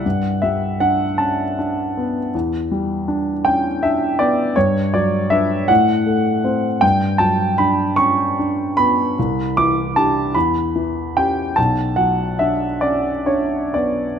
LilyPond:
<<
  \new Staff \with { instrumentName = "Grand piano" } { \time 6/8 \key g \lydian \tempo 4. = 52 fis''8 e''8 fis''8 a''8 r4 | r4. g''8 e''8 d''8 | cis''8 d''8 e''8 fis''4. | g''8 a''8 b''8 cis'''4 b''8~ |
b''8 d'''8 a''8 b''4 g''8 | a''8 fis''8 e''8 d''8 cis''8 d''8 | }
  \new Staff \with { instrumentName = "Grand piano" } { \time 6/8 \key g \lydian g,8 g8 d'8 cis'8 d'8 b8 | e,8 g8 d'8 cis'8 d'8 b8 | g,8 fis8 <d' b'>8 a,8 a8 <c' c''>8 | g,8 fis8 d'8 cis'8 d'8 b8 |
c,8 e8 <d' g'>8 e,8 e8 <cis' g'>8 | b,,8 fis8 d'8 cis'8 d'8 b8 | }
>>